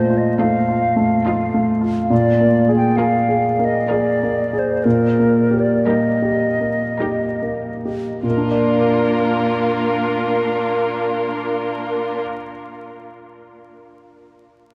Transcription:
Already playing: A#2 A3 C5
0.10 F4
0.18 D#5
0.38 F3 A3 D#4 F4 A4 F5
0.69 F4
0.96 A3
1.26 F3 D#4 F4 A4
1.54 A3
1.81 F4
2.10 A#2 D5
2.40 A#3
2.69 G#4
2.76 G5
2.97 F3 A#3 F4 G#4 A#4 F5
3.29 G#4
3.59 A#3
3.65 D#5
3.88 F3 F4 G#4 A#4 D5
4.23 A#3
4.53 G#4
4.59 C5
4.84 A#2 A#4
5.19 A#3
5.51 G4
5.60 D5
5.86 G3 A#3 D#4 G4 A#4 D#5
6.22 G4
6.60 A#3
7.00 G3 D#4 G4 A#4
7.42 A#3
7.85 G4
8.23 A#2 A#3 D4 F4 A#4
8.30 A#3
8.37 D4
8.44 F4
8.51 D5

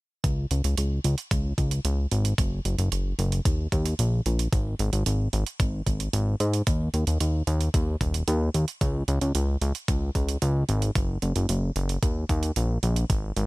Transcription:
0.24 C#2, kick, closed hi-hat
0.51 C#2, closed hi-hat
0.64 C#2, closed hi-hat
0.78 C#2, closed hi-hat
1.04 C#2, closed hi-hat
1.18 closed hi-hat
1.31 C#2, kick, closed hi-hat
1.58 C#2, kick, closed hi-hat
1.71 closed hi-hat
1.85 C#2, closed hi-hat
2.11 G#1, closed hi-hat
2.25 closed hi-hat
2.38 F#1, kick, closed hi-hat
2.65 F#1, closed hi-hat
2.78 F#1, closed hi-hat
2.92 F#1, closed hi-hat
3.19 F#1, closed hi-hat
3.32 closed hi-hat
3.45 D#2, kick, closed hi-hat
3.72 D#2, kick, closed hi-hat
3.86 closed hi-hat
3.99 A#1, closed hi-hat
4.26 A#1, closed hi-hat
4.39 closed hi-hat
4.53 G#1, kick, closed hi-hat
4.79 G#1, closed hi-hat
4.93 G#1, closed hi-hat
5.06 G#1, closed hi-hat
5.33 G#1, closed hi-hat
5.46 closed hi-hat
5.60 G#1, kick, closed hi-hat
5.86 G#1, kick, closed hi-hat
6.00 closed hi-hat
6.13 G#1, closed hi-hat
6.40 G#2, closed hi-hat
6.54 closed hi-hat
6.67 D#2, kick, closed hi-hat
6.94 D#2, closed hi-hat
7.07 D#2, closed hi-hat
7.20 D#2, closed hi-hat
7.47 D#2, closed hi-hat
7.61 closed hi-hat
7.74 D#2, kick, closed hi-hat
8.01 D#1, kick, closed hi-hat
8.14 closed hi-hat
8.28 D#2, closed hi-hat
8.54 D#2, closed hi-hat
8.68 closed hi-hat
8.81 C#2, kick, closed hi-hat
9.08 C#2, closed hi-hat
9.21 C#2, closed hi-hat
9.35 C#2, closed hi-hat
9.61 C#2, closed hi-hat
9.75 closed hi-hat
9.88 C#2, kick, closed hi-hat
10.15 C#2, kick, closed hi-hat
10.29 closed hi-hat
10.42 C#2, closed hi-hat
10.69 G#1, closed hi-hat
10.82 closed hi-hat
10.95 F#1, kick, closed hi-hat
11.22 F#1, closed hi-hat
11.36 F#1, closed hi-hat
11.49 F#1, closed hi-hat
11.76 F#1, closed hi-hat
11.89 closed hi-hat
12.03 D#2, kick, closed hi-hat
12.29 D#2, kick, closed hi-hat
12.43 closed hi-hat
12.56 A#1, closed hi-hat
12.83 A#1, closed hi-hat
12.96 closed hi-hat
13.10 G#1, kick, closed hi-hat
13.36 G#1, closed hi-hat

